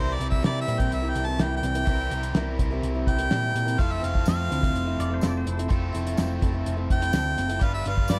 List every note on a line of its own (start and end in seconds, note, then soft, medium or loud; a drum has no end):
0.00 0.16 C2 medium
0.00 0.19 C3 medium
0.00 0.19 E3 medium
0.00 0.17 G3 medium
0.00 0.18 C4 medium
0.00 0.19 E4 medium
0.00 0.20 A#4 medium
0.00 0.15 C5 medium
0.13 0.28 D5 medium
0.18 0.40 C2 medium
0.18 0.41 G3 medium
0.18 0.42 C4 medium
0.18 0.42 E4 medium
0.18 0.42 A#4 medium
0.18 closed hi-hat medium
0.29 0.44 E5 medium
0.29 kick medium
0.42 0.67 C3 medium
0.42 0.64 C3 medium
0.42 0.67 E3 medium
0.42 0.65 G3 medium
0.42 0.66 C4 medium
0.42 0.67 E4 medium
0.42 0.67 A#4 medium
0.42 0.60 D5 medium
0.42 snare loud
0.42 closed hi-hat medium
0.61 0.81 E5 medium
0.66 0.88 A#2 medium
0.66 0.79 G3 medium
0.66 0.79 C4 medium
0.66 0.78 E4 medium
0.66 0.77 A#4 medium
0.66 closed hi-hat medium
0.78 1.03 G3 soft
0.78 1.03 C4 soft
0.78 1.02 E4 medium
0.78 1.01 A#4 medium
0.78 0.93 G5 medium
0.78 kick medium
0.78 closed hi-hat medium
0.92 1.12 C2 medium
0.92 1.11 E5 medium
0.92 closed hi-hat medium
1.02 1.28 G3 soft
1.02 1.27 C4 soft
1.02 1.26 E4 medium
1.02 1.25 A#4 soft
1.09 1.27 G5 medium
1.15 1.36 C2 medium
1.15 closed hi-hat medium
1.26 1.38 G3 soft
1.26 1.38 C4 soft
1.26 1.38 E4 soft
1.26 1.39 A#4 soft
1.26 1.44 A5 medium
1.39 1.59 C2 medium
1.39 1.63 C3 medium
1.39 1.63 E3 medium
1.39 1.61 G3 medium
1.39 1.62 C4 medium
1.39 1.63 E4 medium
1.39 1.64 A#4 medium
1.39 1.56 G5 medium
1.39 snare loud
1.39 closed hi-hat medium
1.57 2.49 G5 loud
1.62 1.83 C2 medium
1.62 1.75 G3 medium
1.62 1.75 C4 medium
1.62 1.74 E4 medium
1.62 1.74 A#4 medium
1.62 snare soft
1.62 closed hi-hat medium
1.75 1.86 G3 soft
1.75 1.87 C4 medium
1.75 1.87 E4 soft
1.75 1.87 A#4 medium
1.75 closed hi-hat medium
1.87 2.08 C2 medium
1.87 2.11 C3 medium
1.87 2.11 E3 medium
1.87 2.09 G3 medium
1.87 2.10 C4 medium
1.87 2.11 E4 medium
1.87 2.12 A#4 medium
1.87 kick loud
1.87 closed hi-hat medium
2.10 2.31 C2 medium
2.10 2.34 G3 medium
2.10 2.35 C4 medium
2.10 2.35 E4 medium
2.10 2.36 A#4 medium
2.10 closed hi-hat medium
2.23 closed hi-hat medium
2.35 2.55 C2 medium
2.35 2.59 C3 medium
2.35 2.59 E3 medium
2.35 2.57 G3 medium
2.35 2.58 C4 medium
2.35 2.59 E4 medium
2.35 2.59 A#4 medium
2.35 snare loud
2.35 closed hi-hat medium
2.58 2.80 C2 medium
2.58 2.70 G3 medium
2.58 2.71 C4 medium
2.58 2.71 E4 medium
2.58 2.70 A#4 medium
2.58 kick medium
2.58 closed hi-hat medium
2.71 2.95 G3 soft
2.71 2.95 C4 medium
2.71 2.94 E4 medium
2.71 2.93 A#4 medium
2.83 3.03 C2 medium
2.83 closed hi-hat medium
2.94 3.20 G3 soft
2.94 3.19 C4 soft
2.94 3.18 E4 soft
2.94 3.17 A#4 medium
3.07 3.28 C2 medium
3.07 3.81 G5 loud
3.07 kick medium
3.07 closed hi-hat medium
3.18 3.29 G3 soft
3.18 3.30 C4 soft
3.18 3.30 E4 soft
3.18 3.30 A#4 medium
3.18 closed hi-hat medium
3.30 3.52 A#2 medium
3.30 3.54 C3 medium
3.30 3.54 E3 medium
3.30 3.53 G3 medium
3.30 3.54 C4 medium
3.30 3.54 E4 medium
3.30 3.55 A#4 medium
3.30 snare loud
3.30 closed hi-hat medium
3.54 3.75 A#2 medium
3.54 3.66 G3 medium
3.54 3.66 C4 medium
3.54 3.65 E4 medium
3.54 3.64 A#4 medium
3.54 closed hi-hat medium
3.65 3.78 G3 soft
3.65 3.78 C4 soft
3.65 3.78 E4 soft
3.65 3.78 A#4 medium
3.65 closed hi-hat medium
3.78 3.99 F1 medium
3.78 4.02 F3 medium
3.78 4.00 A3 medium
3.78 4.01 C4 medium
3.78 4.02 E4 medium
3.78 5.70 F4 medium
3.78 4.03 A4 medium
3.78 3.94 F5 loud
3.78 kick loud
3.78 closed hi-hat medium
3.92 4.05 E5 medium
4.02 4.23 F1 medium
4.02 4.25 A3 medium
4.02 4.25 C4 medium
4.02 4.26 E4 medium
4.02 4.26 A4 medium
4.02 4.26 F5 medium
4.02 closed hi-hat medium
4.15 kick medium
4.26 4.47 F2 medium
4.26 4.50 F3 medium
4.26 4.49 A3 medium
4.26 4.50 C4 medium
4.26 4.50 E4 medium
4.26 4.51 A4 medium
4.26 5.20 F5 loud
4.26 snare loud
4.26 closed hi-hat medium
4.26 tambourine medium
4.50 4.71 D2 medium
4.50 4.62 A3 medium
4.50 4.63 C4 medium
4.50 4.62 E4 medium
4.50 4.60 A4 medium
4.50 closed hi-hat medium
4.61 4.87 C4 soft
4.61 4.86 E4 soft
4.61 4.84 A4 medium
4.61 kick medium
4.61 closed hi-hat medium
4.74 4.95 F1 medium
4.74 closed hi-hat medium
4.85 5.11 C4 soft
4.85 5.10 E4 soft
4.85 5.08 A4 medium
4.99 5.19 F1 medium
4.99 5.11 D5 medium
4.99 closed hi-hat medium
5.10 5.21 C4 soft
5.10 5.22 E4 medium
5.10 5.21 A4 medium
5.14 5.24 C5 medium
5.21 5.43 F1 medium
5.21 5.46 F3 medium
5.21 5.43 A3 medium
5.21 5.45 C4 medium
5.21 5.45 E4 medium
5.21 5.46 A4 medium
5.21 snare loud
5.21 closed hi-hat medium
5.21 tambourine medium
5.27 5.36 D5 medium
5.37 5.47 C5 medium
5.44 5.67 F1 medium
5.44 5.57 A3 medium
5.44 5.58 C4 medium
5.44 5.57 E4 medium
5.44 5.56 A4 medium
5.44 closed hi-hat medium
5.51 5.95 C5 medium
5.57 5.69 C4 medium
5.57 5.69 E4 medium
5.57 5.70 A4 medium
5.57 closed hi-hat medium
5.69 5.91 F1 medium
5.69 5.93 F3 medium
5.69 5.91 A3 medium
5.69 5.93 C4 medium
5.69 5.93 E4 loud
5.69 7.61 F4 medium
5.69 5.94 A4 medium
5.69 kick loud
5.69 closed hi-hat medium
5.92 6.14 F1 medium
5.92 6.17 A3 medium
5.92 6.16 C4 medium
5.92 6.17 E4 medium
5.92 6.18 A4 medium
5.92 closed hi-hat medium
6.07 closed hi-hat medium
6.17 6.39 F1 medium
6.17 6.41 F3 medium
6.17 6.39 A3 medium
6.17 6.40 C4 medium
6.17 6.41 E4 medium
6.17 6.42 A4 loud
6.17 snare loud
6.17 closed hi-hat medium
6.17 tambourine medium
6.40 6.62 F1 medium
6.40 6.53 A3 medium
6.40 6.54 C4 medium
6.40 6.53 E4 medium
6.40 6.51 A4 medium
6.40 kick medium
6.40 closed hi-hat medium
6.53 6.77 C4 medium
6.53 6.76 E4 medium
6.53 6.76 A4 medium
6.66 6.86 F1 medium
6.66 closed hi-hat medium
6.77 7.02 C4 soft
6.77 7.01 E4 medium
6.77 6.98 A4 soft
6.90 7.10 F1 medium
6.90 7.65 G5 loud
6.90 kick medium
6.90 closed hi-hat medium
7.00 7.12 C4 soft
7.00 7.12 E4 medium
7.00 7.12 A4 soft
7.00 closed hi-hat medium
7.12 7.34 D2 medium
7.12 7.37 F3 medium
7.12 7.35 A3 medium
7.12 7.36 C4 medium
7.12 7.37 E4 medium
7.12 7.37 A4 medium
7.12 snare loud
7.12 closed hi-hat medium
7.12 tambourine loud
7.36 7.58 F#1 medium
7.36 7.49 A3 medium
7.36 7.49 C4 medium
7.36 7.49 E4 medium
7.36 7.47 A4 medium
7.36 snare soft
7.36 closed hi-hat medium
7.48 7.61 C4 soft
7.48 7.61 E4 soft
7.48 7.61 A4 medium
7.48 closed hi-hat medium
7.60 7.82 G1 loud
7.60 7.84 G3 medium
7.60 7.85 D4 medium
7.60 7.85 F4 medium
7.60 7.86 B4 loud
7.60 7.73 F5 medium
7.60 kick loud
7.60 closed hi-hat medium
7.74 7.85 E5 loud
7.85 8.06 G1 medium
7.85 8.08 G3 medium
7.85 8.09 D4 medium
7.85 8.09 F4 medium
7.85 8.10 B4 medium
7.85 8.12 F5 loud
7.85 closed hi-hat medium
7.98 kick medium
8.08 8.19 G2 medium
8.08 8.19 G3 medium
8.08 8.19 D4 medium
8.08 8.19 F4 medium
8.08 8.19 B4 medium
8.08 8.19 D5 loud
8.08 snare loud
8.08 closed hi-hat medium
8.08 tambourine loud